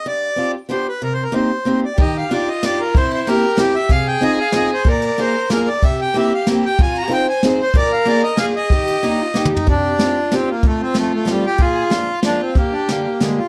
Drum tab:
RD |------------------|------------------|x-----x-----x-----|x--x--x-----x-----|
HH |------------------|------------------|------------------|------------------|
SD |------------------|------------------|------------o-----|------------o-----|
T2 |------------------|------------------|------------------|------------------|
FT |------------------|------------------|------------------|------------------|
BD |------------------|------------------|o-----------------|o-----------------|

RD |x-----x-----x-----|x--x--x-----x-----|x-----x-----x-----|x--x--x-----x-----|
HH |------------------|------------------|------------------|------------------|
SD |------------o-----|------------o-----|------------o-----|------------o-----|
T2 |------------------|------------------|------------------|------------------|
FT |------------------|------------------|------------------|------------------|
BD |o-----------------|o-----------------|o-----------------|o-----------------|

RD |x-----x-----x-----|x--x--x-----------|------------------|------------------|
HH |------------------|------------------|x-----x-----x-----|x-----x-----x-----|
SD |------------o-----|------------o-----|------o-----o-----|------o-----o-----|
T2 |------------------|--------------o---|------------------|------------------|
FT |------------------|----------------o-|------------------|------------------|
BD |o-----------------|o-----------------|o-----------------|o-----------------|

RD |------------------|------------------|
HH |x-----x-----x-----|x-----x-----x-----|
SD |------o-----o-----|------o-----o-----|
T2 |------------------|------------------|
FT |------------------|------------------|
BD |o-----------------|o-----------------|